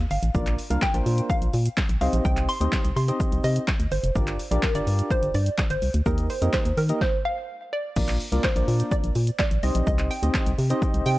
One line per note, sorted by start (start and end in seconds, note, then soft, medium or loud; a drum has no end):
0.11 0.18 G1 loud
0.11 0.78 F5 loud
0.11 open hi-hat medium
0.11 shaker soft
0.23 0.30 A1 loud
0.23 closed hi-hat medium
0.23 shaker medium
0.34 0.57 A#1 loud
0.34 0.54 A#3 medium
0.34 0.55 D4 medium
0.34 0.55 F4 medium
0.34 0.55 A#4 medium
0.34 0.55 D5 medium
0.34 kick loud
0.34 shaker medium
0.47 clap medium
0.47 closed hi-hat medium
0.47 shaker medium
0.58 open hi-hat medium
0.58 shaker medium
0.70 0.78 C2 medium
0.70 0.84 A#3 medium
0.70 0.84 D4 medium
0.70 0.84 F4 medium
0.70 0.84 A#4 medium
0.70 0.84 F5 medium
0.70 closed hi-hat medium
0.70 shaker medium
0.82 1.31 G5 loud
0.82 kick loud
0.82 snare medium
0.82 clap loud
0.82 shaker medium
0.94 1.02 A#1 loud
0.94 1.47 A#3 medium
0.94 1.47 D4 medium
0.94 1.47 F4 medium
0.94 1.48 A#4 medium
0.94 1.48 C5 medium
0.94 closed hi-hat medium
0.94 shaker medium
1.06 1.21 A#2 loud
1.06 open hi-hat medium
1.06 shaker medium
1.18 closed hi-hat medium
1.18 shaker medium
1.30 2.00 F5 loud
1.30 kick loud
1.30 shaker medium
1.42 1.49 A#1 medium
1.42 closed hi-hat soft
1.42 shaker soft
1.53 1.69 A#2 loud
1.53 open hi-hat medium
1.53 shaker medium
1.66 closed hi-hat medium
1.66 shaker medium
1.77 kick loud
1.77 snare loud
1.77 clap loud
1.77 shaker medium
1.89 1.97 A#1 loud
1.89 closed hi-hat medium
1.89 shaker medium
2.01 2.09 C2 loud
2.01 2.49 C4 medium
2.01 2.49 D#4 medium
2.01 2.49 G4 medium
2.01 2.49 C5 medium
2.01 2.49 D#5 medium
2.01 2.26 F5 loud
2.01 open hi-hat medium
2.01 shaker medium
2.13 2.21 A#1 loud
2.13 closed hi-hat medium
2.13 shaker medium
2.25 2.48 C2 loud
2.25 2.50 G5 loud
2.25 kick loud
2.25 shaker medium
2.37 clap medium
2.37 closed hi-hat medium
2.37 shaker medium
2.49 2.93 C6 loud
2.49 open hi-hat medium
2.49 shaker soft
2.60 2.68 D2 medium
2.60 2.87 C4 medium
2.60 2.87 D#4 medium
2.60 2.87 G4 medium
2.60 2.88 C5 medium
2.60 2.88 D#5 medium
2.60 closed hi-hat medium
2.60 shaker medium
2.72 kick loud
2.72 snare medium
2.72 clap loud
2.72 shaker medium
2.84 2.92 C2 medium
2.84 closed hi-hat medium
2.84 shaker medium
2.96 3.11 C3 loud
2.96 3.41 C6 loud
2.96 open hi-hat medium
2.96 shaker medium
3.08 3.62 C4 medium
3.08 3.62 D#4 medium
3.08 3.62 G4 medium
3.08 3.62 C5 medium
3.08 3.62 D#5 medium
3.08 closed hi-hat medium
3.08 shaker medium
3.20 kick loud
3.20 shaker medium
3.32 3.40 C2 medium
3.32 closed hi-hat medium
3.32 shaker medium
3.44 3.59 C3 loud
3.44 3.93 D#5 loud
3.44 open hi-hat medium
3.44 shaker medium
3.56 closed hi-hat medium
3.56 shaker medium
3.68 kick loud
3.68 snare loud
3.68 clap loud
3.68 shaker medium
3.80 3.87 D2 medium
3.80 closed hi-hat medium
3.80 shaker medium
3.92 3.99 G1 medium
3.92 4.65 C5 loud
3.92 open hi-hat medium
3.92 shaker soft
4.04 4.11 F1 loud
4.04 closed hi-hat medium
4.04 shaker medium
4.15 4.38 G1 loud
4.15 4.35 D4 medium
4.15 4.35 F4 medium
4.15 4.36 G4 medium
4.15 4.36 A#4 medium
4.15 4.36 D5 medium
4.15 kick loud
4.15 shaker medium
4.27 clap medium
4.27 closed hi-hat medium
4.27 shaker medium
4.39 open hi-hat medium
4.39 shaker medium
4.51 4.59 A#1 medium
4.51 4.64 D4 medium
4.51 4.65 F4 medium
4.51 4.65 G4 medium
4.51 4.65 A#4 medium
4.51 4.65 D5 medium
4.51 closed hi-hat medium
4.51 shaker medium
4.63 4.76 A#4 loud
4.63 kick loud
4.63 snare medium
4.63 clap loud
4.63 shaker medium
4.75 4.83 G1 loud
4.75 5.28 D4 medium
4.75 5.28 F4 medium
4.75 5.28 G4 medium
4.75 5.28 A#4 medium
4.75 5.12 D5 loud
4.75 5.28 D5 medium
4.75 closed hi-hat medium
4.75 shaker medium
4.87 5.02 G2 loud
4.87 open hi-hat medium
4.87 shaker medium
4.99 closed hi-hat medium
4.99 shaker medium
5.11 5.33 C5 loud
5.11 kick loud
5.11 shaker medium
5.23 5.30 G1 medium
5.23 closed hi-hat soft
5.23 shaker soft
5.34 5.50 G2 loud
5.34 5.68 D5 loud
5.34 open hi-hat medium
5.34 shaker medium
5.46 closed hi-hat medium
5.46 shaker medium
5.58 kick loud
5.58 snare medium
5.58 clap loud
5.58 shaker medium
5.70 5.78 G1 loud
5.70 6.07 C5 loud
5.70 closed hi-hat medium
5.70 shaker medium
5.82 5.90 C2 medium
5.82 open hi-hat medium
5.82 shaker medium
5.94 6.02 D2 loud
5.94 closed hi-hat medium
5.94 shaker medium
6.06 6.29 D#2 loud
6.06 6.26 A#3 medium
6.06 6.26 D#4 medium
6.06 6.26 G4 medium
6.06 6.26 A#4 medium
6.06 6.31 A#4 medium
6.06 6.26 D#5 medium
6.06 kick loud
6.06 shaker medium
6.18 closed hi-hat medium
6.18 shaker medium
6.30 6.52 C5 medium
6.30 open hi-hat medium
6.30 shaker medium
6.42 6.49 F2 medium
6.42 6.68 A#3 medium
6.42 6.68 D#4 medium
6.42 6.68 G4 medium
6.42 6.68 A#4 medium
6.42 6.69 D#5 medium
6.42 closed hi-hat medium
6.42 shaker medium
6.53 6.78 C5 medium
6.53 kick loud
6.53 snare medium
6.53 clap loud
6.53 shaker medium
6.65 6.73 D#2 loud
6.65 closed hi-hat medium
6.65 shaker medium
6.77 6.92 D#3 loud
6.77 7.02 A#4 medium
6.77 open hi-hat medium
6.77 shaker medium
6.89 7.01 A#3 medium
6.89 7.01 D#4 medium
6.89 7.01 G4 medium
6.89 7.01 A#4 medium
6.89 7.01 D#5 medium
6.89 closed hi-hat medium
6.89 shaker medium
7.01 7.46 C5 medium
7.01 kick loud
7.01 snare medium
7.25 7.69 F5 loud
7.73 8.46 D5 loud
7.96 8.19 A#1 loud
7.96 8.16 A#3 medium
7.96 8.16 D4 medium
7.96 8.16 F4 medium
7.96 8.17 A#4 medium
7.96 8.17 D5 medium
7.96 kick loud
7.96 crash loud
7.96 shaker medium
8.08 clap medium
8.08 closed hi-hat medium
8.08 shaker medium
8.20 open hi-hat medium
8.20 shaker medium
8.32 8.40 C2 medium
8.32 8.45 A#3 medium
8.32 8.45 D4 medium
8.32 8.46 F4 medium
8.32 8.46 A#4 medium
8.32 8.46 D5 medium
8.32 closed hi-hat medium
8.32 shaker medium
8.44 8.93 C5 loud
8.44 kick loud
8.44 snare loud
8.44 clap loud
8.44 shaker medium
8.56 8.64 A#1 loud
8.56 9.09 A#3 medium
8.56 9.09 D4 medium
8.56 9.09 F4 medium
8.56 9.09 A#4 medium
8.56 9.09 D5 medium
8.56 closed hi-hat medium
8.56 shaker medium
8.68 8.83 A#2 loud
8.68 open hi-hat medium
8.68 shaker medium
8.80 closed hi-hat medium
8.80 shaker medium
8.91 9.38 D5 loud
8.91 kick loud
8.91 shaker medium
9.04 9.11 A#1 loud
9.04 closed hi-hat soft
9.04 shaker soft
9.15 9.31 A#2 loud
9.15 open hi-hat medium
9.15 shaker medium
9.27 closed hi-hat medium
9.27 shaker medium
9.39 9.64 D5 loud
9.39 kick loud
9.39 snare loud
9.39 clap loud
9.39 shaker medium
9.51 9.59 A#1 medium
9.51 closed hi-hat medium
9.51 shaker medium
9.63 9.71 C2 loud
9.63 10.11 C4 medium
9.63 10.11 D#4 medium
9.63 10.11 G4 medium
9.63 10.11 C5 medium
9.63 9.86 D#5 medium
9.63 10.11 D#5 medium
9.63 open hi-hat medium
9.63 shaker medium
9.75 9.83 A#1 loud
9.75 closed hi-hat medium
9.75 shaker medium
9.87 10.10 C2 loud
9.87 10.11 D#5 loud
9.87 kick loud
9.87 shaker medium
9.99 clap medium
9.99 closed hi-hat medium
9.99 shaker medium
10.11 11.05 G5 loud
10.11 open hi-hat medium
10.11 shaker medium
10.23 10.30 D2 medium
10.23 10.49 C4 medium
10.23 10.49 D#4 medium
10.23 10.49 G4 medium
10.23 10.49 C5 medium
10.23 10.50 D#5 medium
10.23 closed hi-hat medium
10.23 shaker medium
10.34 kick loud
10.34 snare medium
10.34 clap loud
10.34 shaker medium
10.46 10.54 C2 medium
10.46 closed hi-hat medium
10.46 shaker medium
10.58 10.74 C3 loud
10.58 open hi-hat medium
10.58 shaker medium
10.70 11.19 C4 loud
10.70 11.19 D#4 medium
10.70 11.19 G4 medium
10.70 11.19 C5 medium
10.70 11.19 D#5 loud
10.70 closed hi-hat medium
10.70 shaker medium
10.82 kick loud
10.82 shaker medium
10.94 11.02 C2 medium
10.94 closed hi-hat medium
10.94 shaker soft
11.06 11.19 C3 loud
11.06 11.19 G5 loud
11.06 open hi-hat medium
11.06 shaker medium